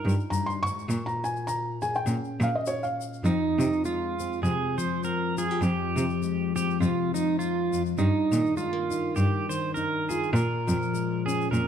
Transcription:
Already playing: G2 D#4 F4 A#4
0.05 G2, shaker
0.20 shaker
0.30 G2 A#5, shaker
0.46 C6, shaker
0.63 G#2 C#6
0.67 shaker
0.79 shaker
0.89 A#2, shaker
1.06 A#5, shaker
1.24 G#5, shaker
1.36 shaker
1.47 A#5, shaker
1.82 G#4 G#5, shaker
1.95 G5, shaker
2.06 A#2 C#4, shaker
2.24 shaker
2.40 A#2 F5, shaker
2.55 D#5
2.66 C#5, shaker
2.83 F5, shaker
3.01 shaker
3.13 shaker
3.24 F2 D#4, shaker
3.58 C3 F3, shaker
3.73 shaker
3.84 G#3 F4, shaker
4.20 C4, shaker
4.33 shaker
4.43 F2 C3 G#4, shaker
4.78 F3 C5, shaker
5.04 C4 A#4, shaker
5.38 F4 G#4, shaker
5.50 G4, shaker
5.61 F2 G4, shaker
5.96 C3 F3, shaker
6.09 shaker
6.22 G#3, shaker
6.56 C4 G4, shaker
6.70 shaker
6.80 F2 C3 F4, shaker
7.14 F3 D#4, shaker
7.39 F4, shaker
7.73 F2, shaker
7.86 shaker
7.98 G2 D#4, shaker
8.31 A#2 D#3, shaker
8.46 shaker
8.56 G#3 F4, shaker
8.73 A#3
8.91 D#4, shaker
9.16 G2 G4, shaker
9.49 D#3 C5, shaker
9.74 D#4 A#4, shaker
10.09 F4 G#4, shaker
10.23 shaker
10.33 A#2 A#4, shaker
10.67 F2 F3, shaker
10.82 shaker
10.94 G#3, shaker
11.26 C#4 G#4, shaker
11.41 shaker
11.50 F2 A#2 A#4, shaker

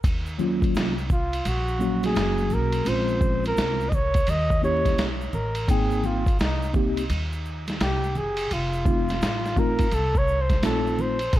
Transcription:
0.04 D#2, kick, ride, shaker
0.26 shaker
0.38 F#3 A#3 C#4 F4, high conga, low conga, shaker
0.62 kick, ride, shaker
0.75 C2, snare, hi-hat pedal, ride, shaker
0.98 shaker
1.10 F4, kick, low conga, shaker
1.33 ride, shaker
1.45 A#1 F#4, ride, high conga, shaker
1.68 shaker
1.79 F#3 A#3 C#4 F#4, shaker
2.03 G#4, snare, ride, high conga, shaker
2.15 F#1, snare, hi-hat pedal, ride, shaker
2.38 shaker
2.50 B1 A#4, low conga, shaker
2.72 ride, shaker
2.85 A#1 G#3 C4 C#4 F4 C5, ride, shaker
3.08 shaker
3.21 kick, high conga, low conga, shaker
3.44 A#4, ride, shaker
3.57 C2, snare, hi-hat pedal, ride, shaker
3.80 shaker
3.89 D#5, kick, low conga, shaker
3.95 C#5
4.14 kick, ride, shaker
4.27 D#2 D#5, ride, high conga, shaker
4.50 kick, shaker
4.62 A#3 C#4 E4 G4 C#5, shaker
4.85 kick, snare, ride, high conga, shaker
4.98 B1, snare, hi-hat pedal, ride, shaker
5.21 shaker
5.33 A1 A#4, low conga, shaker
5.55 ride, shaker
5.68 G#1 A#3 C4 D#4 G#4 G5, kick, ride, shaker
5.91 shaker
6.04 F4, high conga, low conga, shaker
6.26 kick, ride, shaker
6.39 C2 D#4, snare, hi-hat pedal, ride, shaker
6.63 shaker
6.73 A#3 C4 D#4 G4, kick, low conga, shaker
6.97 ride, shaker
7.10 D#2, ride, high conga, shaker
7.33 shaker
7.45 shaker
7.68 snare, ride, high conga, shaker
7.80 C2 G4, snare, hi-hat pedal, ride, shaker
8.04 shaker
8.15 F#1 G#4, low conga, shaker
8.37 ride, shaker
8.51 F1 F4, ride, shaker
8.73 shaker
8.85 A3 C4 D#4 F4, kick, high conga, low conga, shaker
9.08 snare, ride, shaker
9.21 A1, snare, hi-hat pedal, ride, shaker
9.45 snare, shaker
9.56 A3 C4 D#4 F4 A#4, kick, low conga, shaker
9.79 kick, ride, shaker
9.91 C2 A4, ride, high conga, shaker
10.15 C#5, kick, shaker
10.28 shaker
10.41 C5
10.50 kick, snare, ride, high conga, shaker
10.62 A#1 A3 C4 D#4 F4 A4, snare, hi-hat pedal, ride, shaker
10.87 shaker
10.99 C5, low conga, shaker
11.19 ride, shaker
11.33 A#1 G#4, kick, ride, shaker

